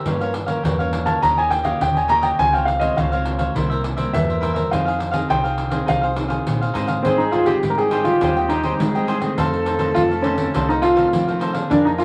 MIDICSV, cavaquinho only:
0, 0, Header, 1, 3, 480
1, 0, Start_track
1, 0, Key_signature, -4, "minor"
1, 0, Tempo, 582524
1, 50, Time_signature, 4, 2, 24, 8
1, 5809, Key_signature, -4, "major"
1, 9926, End_track
2, 0, Start_track
2, 0, Title_t, "Cavaquinho"
2, 0, Program_c, 0, 24
2, 49, Note_on_c, 0, 67, 50
2, 59, Note_on_c, 0, 70, 50
2, 62, Note_on_c, 0, 73, 51
2, 69, Note_on_c, 0, 77, 57
2, 160, Note_off_c, 0, 67, 0
2, 163, Note_off_c, 0, 77, 0
2, 165, Note_off_c, 0, 70, 0
2, 166, Note_off_c, 0, 73, 0
2, 173, Note_on_c, 0, 77, 69
2, 184, Note_on_c, 0, 73, 60
2, 191, Note_on_c, 0, 70, 58
2, 272, Note_off_c, 0, 70, 0
2, 274, Note_off_c, 0, 73, 0
2, 280, Note_off_c, 0, 77, 0
2, 382, Note_on_c, 0, 77, 69
2, 392, Note_on_c, 0, 73, 63
2, 400, Note_on_c, 0, 70, 59
2, 507, Note_off_c, 0, 77, 0
2, 512, Note_off_c, 0, 73, 0
2, 515, Note_off_c, 0, 70, 0
2, 521, Note_on_c, 0, 67, 52
2, 528, Note_on_c, 0, 70, 57
2, 535, Note_on_c, 0, 73, 59
2, 542, Note_on_c, 0, 77, 55
2, 636, Note_off_c, 0, 67, 0
2, 639, Note_off_c, 0, 70, 0
2, 640, Note_off_c, 0, 77, 0
2, 643, Note_off_c, 0, 73, 0
2, 650, Note_on_c, 0, 77, 66
2, 660, Note_on_c, 0, 73, 63
2, 667, Note_on_c, 0, 70, 50
2, 857, Note_off_c, 0, 77, 0
2, 866, Note_off_c, 0, 73, 0
2, 867, Note_on_c, 0, 77, 67
2, 875, Note_off_c, 0, 70, 0
2, 876, Note_on_c, 0, 73, 64
2, 885, Note_on_c, 0, 70, 51
2, 989, Note_off_c, 0, 77, 0
2, 994, Note_off_c, 0, 73, 0
2, 998, Note_off_c, 0, 70, 0
2, 1000, Note_on_c, 0, 63, 51
2, 1005, Note_on_c, 0, 67, 53
2, 1012, Note_on_c, 0, 73, 59
2, 1018, Note_on_c, 0, 75, 59
2, 1116, Note_off_c, 0, 63, 0
2, 1118, Note_off_c, 0, 67, 0
2, 1119, Note_off_c, 0, 75, 0
2, 1122, Note_off_c, 0, 73, 0
2, 1128, Note_on_c, 0, 75, 70
2, 1141, Note_on_c, 0, 73, 61
2, 1150, Note_on_c, 0, 67, 56
2, 1230, Note_off_c, 0, 67, 0
2, 1233, Note_off_c, 0, 73, 0
2, 1237, Note_off_c, 0, 75, 0
2, 1346, Note_on_c, 0, 75, 66
2, 1356, Note_on_c, 0, 73, 62
2, 1364, Note_on_c, 0, 67, 55
2, 1589, Note_off_c, 0, 75, 0
2, 1594, Note_off_c, 0, 73, 0
2, 1598, Note_off_c, 0, 67, 0
2, 1607, Note_on_c, 0, 75, 55
2, 1617, Note_on_c, 0, 73, 46
2, 1622, Note_on_c, 0, 67, 40
2, 1710, Note_off_c, 0, 67, 0
2, 1714, Note_on_c, 0, 63, 79
2, 1717, Note_off_c, 0, 73, 0
2, 1719, Note_off_c, 0, 75, 0
2, 1720, Note_on_c, 0, 67, 75
2, 1726, Note_on_c, 0, 73, 83
2, 1730, Note_on_c, 0, 75, 90
2, 1815, Note_off_c, 0, 75, 0
2, 1825, Note_on_c, 0, 75, 72
2, 1826, Note_off_c, 0, 73, 0
2, 1833, Note_off_c, 0, 63, 0
2, 1836, Note_off_c, 0, 67, 0
2, 1836, Note_on_c, 0, 73, 62
2, 1844, Note_on_c, 0, 67, 61
2, 1948, Note_off_c, 0, 75, 0
2, 1954, Note_off_c, 0, 73, 0
2, 1958, Note_off_c, 0, 67, 0
2, 1966, Note_on_c, 0, 65, 50
2, 1973, Note_on_c, 0, 72, 52
2, 1980, Note_on_c, 0, 73, 52
2, 1985, Note_on_c, 0, 77, 55
2, 2079, Note_off_c, 0, 65, 0
2, 2082, Note_off_c, 0, 72, 0
2, 2083, Note_off_c, 0, 77, 0
2, 2086, Note_off_c, 0, 73, 0
2, 2093, Note_on_c, 0, 77, 74
2, 2103, Note_on_c, 0, 73, 68
2, 2112, Note_on_c, 0, 72, 58
2, 2193, Note_off_c, 0, 72, 0
2, 2194, Note_off_c, 0, 73, 0
2, 2197, Note_off_c, 0, 77, 0
2, 2305, Note_on_c, 0, 77, 65
2, 2314, Note_on_c, 0, 73, 68
2, 2323, Note_on_c, 0, 72, 62
2, 2428, Note_off_c, 0, 77, 0
2, 2433, Note_off_c, 0, 73, 0
2, 2437, Note_off_c, 0, 72, 0
2, 2441, Note_on_c, 0, 65, 55
2, 2450, Note_on_c, 0, 72, 57
2, 2457, Note_on_c, 0, 73, 55
2, 2462, Note_on_c, 0, 77, 63
2, 2556, Note_off_c, 0, 65, 0
2, 2559, Note_off_c, 0, 77, 0
2, 2560, Note_off_c, 0, 72, 0
2, 2564, Note_off_c, 0, 73, 0
2, 2569, Note_on_c, 0, 77, 77
2, 2580, Note_on_c, 0, 73, 59
2, 2589, Note_on_c, 0, 72, 57
2, 2779, Note_off_c, 0, 77, 0
2, 2789, Note_on_c, 0, 77, 68
2, 2790, Note_off_c, 0, 73, 0
2, 2798, Note_off_c, 0, 72, 0
2, 2800, Note_on_c, 0, 73, 66
2, 2808, Note_on_c, 0, 72, 58
2, 2910, Note_off_c, 0, 77, 0
2, 2915, Note_off_c, 0, 73, 0
2, 2920, Note_off_c, 0, 72, 0
2, 2926, Note_on_c, 0, 64, 51
2, 2935, Note_on_c, 0, 70, 57
2, 2939, Note_on_c, 0, 72, 50
2, 2945, Note_on_c, 0, 76, 59
2, 3035, Note_off_c, 0, 76, 0
2, 3038, Note_off_c, 0, 64, 0
2, 3043, Note_off_c, 0, 70, 0
2, 3045, Note_off_c, 0, 72, 0
2, 3045, Note_on_c, 0, 76, 65
2, 3056, Note_on_c, 0, 72, 61
2, 3063, Note_on_c, 0, 70, 62
2, 3152, Note_off_c, 0, 70, 0
2, 3154, Note_off_c, 0, 72, 0
2, 3156, Note_off_c, 0, 76, 0
2, 3267, Note_on_c, 0, 76, 61
2, 3279, Note_on_c, 0, 72, 65
2, 3287, Note_on_c, 0, 70, 53
2, 3509, Note_off_c, 0, 76, 0
2, 3515, Note_off_c, 0, 72, 0
2, 3519, Note_off_c, 0, 70, 0
2, 3532, Note_on_c, 0, 76, 51
2, 3542, Note_on_c, 0, 72, 48
2, 3550, Note_on_c, 0, 70, 45
2, 3628, Note_off_c, 0, 70, 0
2, 3630, Note_on_c, 0, 64, 71
2, 3631, Note_off_c, 0, 72, 0
2, 3638, Note_off_c, 0, 76, 0
2, 3638, Note_on_c, 0, 70, 74
2, 3641, Note_on_c, 0, 72, 71
2, 3648, Note_on_c, 0, 76, 88
2, 3731, Note_off_c, 0, 76, 0
2, 3741, Note_off_c, 0, 72, 0
2, 3741, Note_on_c, 0, 76, 68
2, 3748, Note_off_c, 0, 70, 0
2, 3750, Note_off_c, 0, 64, 0
2, 3751, Note_on_c, 0, 72, 66
2, 3758, Note_on_c, 0, 70, 64
2, 3866, Note_off_c, 0, 76, 0
2, 3871, Note_off_c, 0, 72, 0
2, 3874, Note_off_c, 0, 70, 0
2, 3876, Note_on_c, 0, 63, 49
2, 3884, Note_on_c, 0, 68, 57
2, 3889, Note_on_c, 0, 72, 57
2, 3897, Note_on_c, 0, 77, 55
2, 3990, Note_off_c, 0, 77, 0
2, 3993, Note_off_c, 0, 63, 0
2, 3997, Note_off_c, 0, 68, 0
2, 4000, Note_off_c, 0, 72, 0
2, 4000, Note_on_c, 0, 77, 73
2, 4011, Note_on_c, 0, 72, 62
2, 4020, Note_on_c, 0, 68, 63
2, 4104, Note_off_c, 0, 68, 0
2, 4104, Note_off_c, 0, 72, 0
2, 4110, Note_off_c, 0, 77, 0
2, 4213, Note_on_c, 0, 77, 78
2, 4225, Note_on_c, 0, 72, 61
2, 4234, Note_on_c, 0, 68, 62
2, 4342, Note_off_c, 0, 77, 0
2, 4348, Note_off_c, 0, 72, 0
2, 4350, Note_off_c, 0, 68, 0
2, 4352, Note_on_c, 0, 63, 52
2, 4360, Note_on_c, 0, 68, 58
2, 4365, Note_on_c, 0, 72, 58
2, 4373, Note_on_c, 0, 77, 61
2, 4471, Note_off_c, 0, 63, 0
2, 4471, Note_off_c, 0, 77, 0
2, 4475, Note_off_c, 0, 68, 0
2, 4478, Note_off_c, 0, 72, 0
2, 4481, Note_on_c, 0, 77, 72
2, 4487, Note_on_c, 0, 72, 64
2, 4496, Note_on_c, 0, 68, 57
2, 4688, Note_off_c, 0, 77, 0
2, 4697, Note_off_c, 0, 72, 0
2, 4698, Note_on_c, 0, 77, 71
2, 4706, Note_off_c, 0, 68, 0
2, 4707, Note_on_c, 0, 72, 64
2, 4716, Note_on_c, 0, 68, 52
2, 4824, Note_off_c, 0, 77, 0
2, 4828, Note_off_c, 0, 68, 0
2, 4829, Note_off_c, 0, 72, 0
2, 4829, Note_on_c, 0, 63, 50
2, 4838, Note_on_c, 0, 68, 56
2, 4844, Note_on_c, 0, 72, 54
2, 4847, Note_on_c, 0, 77, 54
2, 4947, Note_off_c, 0, 77, 0
2, 4950, Note_off_c, 0, 63, 0
2, 4954, Note_off_c, 0, 68, 0
2, 4957, Note_off_c, 0, 72, 0
2, 4957, Note_on_c, 0, 77, 74
2, 4969, Note_on_c, 0, 72, 67
2, 4976, Note_on_c, 0, 68, 56
2, 5063, Note_off_c, 0, 68, 0
2, 5065, Note_off_c, 0, 72, 0
2, 5066, Note_off_c, 0, 77, 0
2, 5177, Note_on_c, 0, 77, 67
2, 5187, Note_on_c, 0, 72, 58
2, 5193, Note_on_c, 0, 68, 53
2, 5423, Note_off_c, 0, 77, 0
2, 5428, Note_off_c, 0, 72, 0
2, 5432, Note_off_c, 0, 68, 0
2, 5449, Note_on_c, 0, 77, 55
2, 5459, Note_on_c, 0, 72, 50
2, 5465, Note_on_c, 0, 68, 43
2, 5549, Note_off_c, 0, 68, 0
2, 5550, Note_on_c, 0, 63, 76
2, 5556, Note_off_c, 0, 72, 0
2, 5559, Note_off_c, 0, 77, 0
2, 5559, Note_on_c, 0, 68, 77
2, 5566, Note_on_c, 0, 72, 76
2, 5569, Note_on_c, 0, 77, 85
2, 5654, Note_off_c, 0, 77, 0
2, 5664, Note_off_c, 0, 72, 0
2, 5664, Note_on_c, 0, 77, 69
2, 5670, Note_off_c, 0, 63, 0
2, 5670, Note_off_c, 0, 68, 0
2, 5674, Note_on_c, 0, 72, 72
2, 5680, Note_on_c, 0, 68, 55
2, 5787, Note_off_c, 0, 77, 0
2, 5792, Note_off_c, 0, 72, 0
2, 5795, Note_off_c, 0, 68, 0
2, 5805, Note_on_c, 0, 68, 72
2, 5814, Note_on_c, 0, 72, 72
2, 5819, Note_on_c, 0, 75, 78
2, 5824, Note_on_c, 0, 79, 76
2, 6031, Note_off_c, 0, 68, 0
2, 6036, Note_off_c, 0, 72, 0
2, 6041, Note_on_c, 0, 68, 49
2, 6044, Note_off_c, 0, 75, 0
2, 6046, Note_on_c, 0, 72, 49
2, 6047, Note_off_c, 0, 79, 0
2, 6054, Note_on_c, 0, 75, 50
2, 6059, Note_on_c, 0, 79, 53
2, 6142, Note_off_c, 0, 68, 0
2, 6148, Note_off_c, 0, 72, 0
2, 6152, Note_off_c, 0, 75, 0
2, 6152, Note_on_c, 0, 68, 67
2, 6154, Note_off_c, 0, 79, 0
2, 6158, Note_on_c, 0, 72, 80
2, 6162, Note_on_c, 0, 75, 86
2, 6163, Note_on_c, 0, 79, 78
2, 6235, Note_off_c, 0, 68, 0
2, 6237, Note_off_c, 0, 72, 0
2, 6239, Note_off_c, 0, 75, 0
2, 6240, Note_off_c, 0, 79, 0
2, 6416, Note_on_c, 0, 79, 50
2, 6426, Note_on_c, 0, 75, 46
2, 6435, Note_on_c, 0, 72, 37
2, 6516, Note_off_c, 0, 72, 0
2, 6518, Note_on_c, 0, 68, 72
2, 6522, Note_off_c, 0, 75, 0
2, 6523, Note_off_c, 0, 79, 0
2, 6526, Note_on_c, 0, 72, 73
2, 6532, Note_on_c, 0, 75, 77
2, 6537, Note_on_c, 0, 79, 83
2, 6754, Note_off_c, 0, 68, 0
2, 6758, Note_off_c, 0, 72, 0
2, 6761, Note_off_c, 0, 75, 0
2, 6763, Note_off_c, 0, 79, 0
2, 6769, Note_on_c, 0, 68, 76
2, 6775, Note_on_c, 0, 72, 72
2, 6783, Note_on_c, 0, 75, 77
2, 6788, Note_on_c, 0, 79, 73
2, 6879, Note_off_c, 0, 68, 0
2, 6882, Note_off_c, 0, 72, 0
2, 6883, Note_off_c, 0, 79, 0
2, 6886, Note_off_c, 0, 75, 0
2, 6893, Note_on_c, 0, 79, 51
2, 6903, Note_on_c, 0, 75, 44
2, 6912, Note_on_c, 0, 72, 41
2, 6992, Note_off_c, 0, 72, 0
2, 6995, Note_on_c, 0, 68, 53
2, 6997, Note_off_c, 0, 75, 0
2, 7001, Note_off_c, 0, 79, 0
2, 7002, Note_on_c, 0, 72, 51
2, 7007, Note_on_c, 0, 75, 53
2, 7014, Note_on_c, 0, 79, 55
2, 7108, Note_off_c, 0, 68, 0
2, 7112, Note_off_c, 0, 72, 0
2, 7114, Note_off_c, 0, 75, 0
2, 7118, Note_off_c, 0, 79, 0
2, 7118, Note_on_c, 0, 68, 67
2, 7122, Note_on_c, 0, 72, 74
2, 7124, Note_on_c, 0, 75, 72
2, 7128, Note_on_c, 0, 79, 78
2, 7197, Note_off_c, 0, 68, 0
2, 7199, Note_off_c, 0, 72, 0
2, 7200, Note_off_c, 0, 75, 0
2, 7203, Note_off_c, 0, 79, 0
2, 7373, Note_on_c, 0, 79, 52
2, 7381, Note_on_c, 0, 75, 47
2, 7394, Note_on_c, 0, 72, 41
2, 7472, Note_off_c, 0, 72, 0
2, 7474, Note_on_c, 0, 68, 71
2, 7476, Note_off_c, 0, 75, 0
2, 7481, Note_off_c, 0, 79, 0
2, 7482, Note_on_c, 0, 72, 73
2, 7486, Note_on_c, 0, 75, 75
2, 7493, Note_on_c, 0, 79, 80
2, 7579, Note_off_c, 0, 79, 0
2, 7589, Note_off_c, 0, 75, 0
2, 7589, Note_on_c, 0, 79, 48
2, 7592, Note_off_c, 0, 68, 0
2, 7596, Note_off_c, 0, 72, 0
2, 7599, Note_on_c, 0, 75, 46
2, 7609, Note_on_c, 0, 72, 43
2, 7709, Note_off_c, 0, 79, 0
2, 7714, Note_off_c, 0, 75, 0
2, 7719, Note_off_c, 0, 72, 0
2, 7725, Note_on_c, 0, 63, 66
2, 7731, Note_on_c, 0, 69, 83
2, 7737, Note_on_c, 0, 72, 76
2, 7743, Note_on_c, 0, 77, 82
2, 7943, Note_off_c, 0, 63, 0
2, 7949, Note_off_c, 0, 69, 0
2, 7953, Note_on_c, 0, 63, 50
2, 7958, Note_off_c, 0, 72, 0
2, 7959, Note_on_c, 0, 69, 52
2, 7961, Note_off_c, 0, 77, 0
2, 7968, Note_on_c, 0, 72, 57
2, 7971, Note_on_c, 0, 77, 55
2, 8053, Note_off_c, 0, 63, 0
2, 8059, Note_off_c, 0, 69, 0
2, 8061, Note_off_c, 0, 72, 0
2, 8063, Note_on_c, 0, 63, 73
2, 8064, Note_off_c, 0, 77, 0
2, 8069, Note_on_c, 0, 69, 72
2, 8071, Note_on_c, 0, 72, 77
2, 8074, Note_on_c, 0, 77, 86
2, 8150, Note_off_c, 0, 63, 0
2, 8153, Note_off_c, 0, 69, 0
2, 8154, Note_off_c, 0, 72, 0
2, 8155, Note_off_c, 0, 77, 0
2, 8328, Note_on_c, 0, 77, 46
2, 8338, Note_on_c, 0, 72, 42
2, 8349, Note_on_c, 0, 69, 39
2, 8433, Note_off_c, 0, 69, 0
2, 8437, Note_on_c, 0, 63, 72
2, 8439, Note_off_c, 0, 72, 0
2, 8439, Note_off_c, 0, 77, 0
2, 8443, Note_on_c, 0, 69, 75
2, 8448, Note_on_c, 0, 72, 81
2, 8455, Note_on_c, 0, 77, 79
2, 8673, Note_off_c, 0, 63, 0
2, 8676, Note_off_c, 0, 69, 0
2, 8679, Note_off_c, 0, 72, 0
2, 8682, Note_off_c, 0, 77, 0
2, 8683, Note_on_c, 0, 63, 69
2, 8692, Note_on_c, 0, 69, 72
2, 8696, Note_on_c, 0, 72, 73
2, 8703, Note_on_c, 0, 77, 83
2, 8796, Note_off_c, 0, 63, 0
2, 8799, Note_off_c, 0, 77, 0
2, 8801, Note_off_c, 0, 69, 0
2, 8802, Note_off_c, 0, 72, 0
2, 8809, Note_on_c, 0, 77, 46
2, 8822, Note_on_c, 0, 72, 49
2, 8830, Note_on_c, 0, 69, 40
2, 8912, Note_off_c, 0, 69, 0
2, 8916, Note_on_c, 0, 63, 54
2, 8919, Note_off_c, 0, 72, 0
2, 8919, Note_off_c, 0, 77, 0
2, 8922, Note_on_c, 0, 69, 52
2, 8929, Note_on_c, 0, 72, 55
2, 8934, Note_on_c, 0, 77, 56
2, 9017, Note_off_c, 0, 63, 0
2, 9023, Note_off_c, 0, 69, 0
2, 9025, Note_off_c, 0, 72, 0
2, 9027, Note_on_c, 0, 63, 68
2, 9029, Note_off_c, 0, 77, 0
2, 9033, Note_on_c, 0, 69, 74
2, 9035, Note_on_c, 0, 72, 69
2, 9038, Note_on_c, 0, 77, 88
2, 9112, Note_off_c, 0, 63, 0
2, 9115, Note_off_c, 0, 69, 0
2, 9116, Note_off_c, 0, 72, 0
2, 9118, Note_off_c, 0, 77, 0
2, 9291, Note_on_c, 0, 77, 51
2, 9299, Note_on_c, 0, 72, 45
2, 9309, Note_on_c, 0, 69, 42
2, 9392, Note_off_c, 0, 69, 0
2, 9394, Note_on_c, 0, 63, 75
2, 9397, Note_off_c, 0, 72, 0
2, 9400, Note_off_c, 0, 77, 0
2, 9402, Note_on_c, 0, 69, 79
2, 9407, Note_on_c, 0, 72, 84
2, 9412, Note_on_c, 0, 77, 86
2, 9495, Note_off_c, 0, 77, 0
2, 9505, Note_on_c, 0, 77, 50
2, 9506, Note_off_c, 0, 72, 0
2, 9511, Note_off_c, 0, 63, 0
2, 9515, Note_on_c, 0, 72, 46
2, 9516, Note_off_c, 0, 69, 0
2, 9526, Note_on_c, 0, 69, 41
2, 9627, Note_off_c, 0, 77, 0
2, 9632, Note_off_c, 0, 72, 0
2, 9638, Note_off_c, 0, 69, 0
2, 9640, Note_on_c, 0, 62, 77
2, 9647, Note_on_c, 0, 70, 75
2, 9653, Note_on_c, 0, 77, 70
2, 9658, Note_on_c, 0, 80, 83
2, 9865, Note_off_c, 0, 62, 0
2, 9874, Note_off_c, 0, 70, 0
2, 9875, Note_on_c, 0, 62, 50
2, 9881, Note_off_c, 0, 77, 0
2, 9884, Note_off_c, 0, 80, 0
2, 9884, Note_on_c, 0, 70, 50
2, 9892, Note_on_c, 0, 77, 58
2, 9896, Note_on_c, 0, 80, 56
2, 9926, Note_off_c, 0, 62, 0
2, 9926, Note_off_c, 0, 70, 0
2, 9926, Note_off_c, 0, 77, 0
2, 9926, Note_off_c, 0, 80, 0
2, 9926, End_track
3, 0, Start_track
3, 0, Title_t, "Muted cavaquinho strokes"
3, 280, Note_on_c, 9, 29, 37
3, 363, Note_off_c, 9, 29, 0
3, 1235, Note_on_c, 9, 29, 35
3, 1318, Note_off_c, 9, 29, 0
3, 2198, Note_on_c, 9, 29, 37
3, 2280, Note_off_c, 9, 29, 0
3, 3157, Note_on_c, 9, 29, 40
3, 3240, Note_off_c, 9, 29, 0
3, 4109, Note_on_c, 9, 29, 42
3, 4192, Note_off_c, 9, 29, 0
3, 5067, Note_on_c, 9, 29, 41
3, 5149, Note_off_c, 9, 29, 0
3, 9926, End_track
0, 0, End_of_file